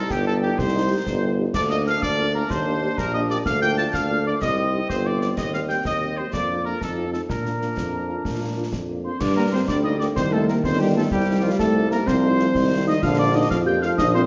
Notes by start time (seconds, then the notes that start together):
Already playing: G3 D#4
0.10 G1 G4 G5, concert bass drum, snare
0.26 G3 D#4 G4 A4 A5
0.42 G3 D#4 G4 G5
0.58 C2 C5 C6, concert bass drum, snare
0.74 G3 D#4 G4
0.90 G3 D#4 G4
1.06 G1, concert bass drum, snare
1.22 G3 D#4 G4
1.38 G3 D#4 G4
1.54 D2 A#3 D4 D5 D6, concert bass drum, snare, crash
1.69 A#3 D4 F4 D#5 D#6, snare
1.86 A#3 D4 F4 F5 F6, snare
2.02 D2 D5 D6, concert bass drum, snare
2.18 A#3 D4 F4
2.34 A#3 D4 F4 A#4 A#5
2.49 D#2 G3 C5 C6, concert bass drum, snare
2.67 A#3 D4 G4
2.83 A#3 D4 G4
2.98 A#1 A#4 A#5, concert bass drum, snare
3.14 A#3 D4 G4 D#5 D#6
3.30 A#3 D4 G4 D5 D6, snare
3.45 D2 A#3 D4 F5 F6, concert bass drum, snare
3.62 A#3 D4 F4 G5 G6, snare
3.77 A#3 D4 F4 A5 A6, snare
3.94 D2 F5 F6, concert bass drum, snare
4.10 A#3 D4 F4
4.26 A#3 D4 F4 D5 D6
4.41 C2 G3 C4 D#5 D#6, concert bass drum, snare
4.57 G3 D#4 G4
4.73 G3 D#4 G4
4.89 G1 C5 C6, concert bass drum, snare
5.06 G3 D#4 G4 D5 D6
5.21 G3 D#4 G4 D5 D6, snare
5.37 D#2 D#5 D#6, concert bass drum, snare, crash
5.53 G3 C4 G4 F5 F6, snare
5.69 G3 C4 G4 G5 G6, snare
5.85 D#2 D#5 D#6, concert bass drum, snare
6.01 G3 C4 G4
6.17 G3 C4 G4 C5 C6
6.33 F2 F3 A#3 D5 D6, concert bass drum, snare
6.49 A#3 D4 F4
6.65 A#3 D4 F4 A#4 A#5
6.81 F2 D#4 A4 A5, concert bass drum, snare
6.97 C4 D#4 F4
7.12 C4 D#4 F4 A4 A5, snare
7.28 A#2 F3 D4 A#4 A#5, concert bass drum, snare
7.45 A#3 D4 F4, snare
7.60 A#3 D4 F4, snare
7.76 F2, concert bass drum, snare
7.92 A#3 D4 F4
8.08 A#3 D4 F4
8.24 A#2, concert bass drum, snare
8.40 A#3 D4 F4
8.56 A#3 D4 F4
8.72 F2, concert bass drum, snare
8.88 A#3 D4 F4
9.04 A#3 C4 D4 F4 C5 C6
9.20 G2 D4 D5 D6, concert bass drum, snare, crash
9.36 A#3 D4 G4 A#4 A#5
9.52 A#3 C4 D4 G4 C5 C6
9.68 D2 G3 D4 D5 D6, concert bass drum, snare
9.84 A#3 D4 D#4 G4 D#5 D#6
9.99 A#3 D4 G4 D5 D6, snare
10.15 C2 D#3 C4 C5 C6, concert bass drum, snare
10.32 A3 A#3 D#4 G4 A4 A5
10.48 A#3 D#4 G4 A#4 A#5, snare
10.64 G1 C4 C5 C6, concert bass drum, snare
10.79 G3 A#3 D#4 G4 G5
10.96 A3 A#3 D#4 G4 A4 A5
11.11 C2 G3 G4 G5, concert bass drum, snare
11.28 A3 D#4 F4
11.43 F3 A3 D#4 F4 F5
11.59 C2 A3 A4 A5, concert bass drum, snare
11.75 A3 D#4 F4
11.90 A3 A#3 D#4 F4 A#4 A#5, snare
12.06 C2 F3 C4 C5 C6, concert bass drum, snare
12.23 A3 D#4 F4
12.39 A3 D#4 F4, snare
12.55 C2 D#3, concert bass drum, snare
12.71 A3 D#4 F4
12.87 A3 D#4 F4 D#5 D#6
13.02 A#1 D3 F4 F5 F6, concert bass drum, snare, crash
13.18 A#3 D4 F4 D5 D6
13.34 A#3 D4 D#4 F4 D#5 D#6
13.50 F2 F3 F4 F5 F6, concert bass drum, snare
13.66 A#3 D4 F4 G4 G5 G6
13.82 A#3 D4 F4 F5 F6, snare
13.97 A#1 D#4 D#5 D#6, concert bass drum, snare
14.14 A3 C4 F4 C5 C6